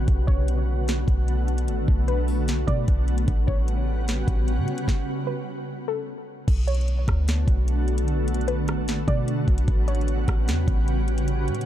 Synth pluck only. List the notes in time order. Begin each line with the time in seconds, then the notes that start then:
0.27 C#5
2.08 B4
2.67 D5
3.47 C#5
5.27 B4
5.88 A4
6.67 C#5
8.48 B4
9.08 D5
9.88 C#5